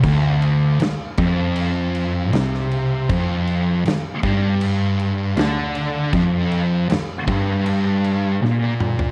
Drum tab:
CC |x-x-x-x-x-x-x-x-|x-x-x-x-x-x-x-x-|x-x-x-x-x-x-----|
SD |----o-------oo--|----o-------o---|----o-------o---|
T2 |----------------|----------------|--------------o-|
FT |----------------|----------------|---------------o|
BD |o-----o---------|o-----o---------|o-----o---------|